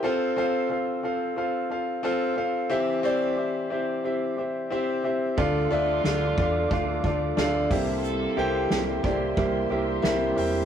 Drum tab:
RD |--------|--------|xxxxxxxx|xxxxxxxx|
HH |--------|--------|-------o|p------o|
SD |--------|--------|--o---o-|--o---o-|
BD |--------|--------|o--ooo-o|---oo---|